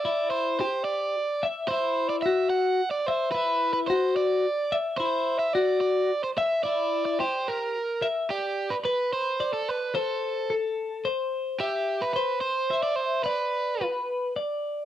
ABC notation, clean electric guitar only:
X:1
M:6/8
L:1/8
Q:3/8=73
K:G
V:1 name="Clean electric guitar"
E2 G2 z e | E2 F2 z e | E2 F2 z e | E2 F2 z e |
E2 G2 z e | d2 B2 d2 | c2 A2 c2 | e2 c2 e2 |
d2 B2 d2 |]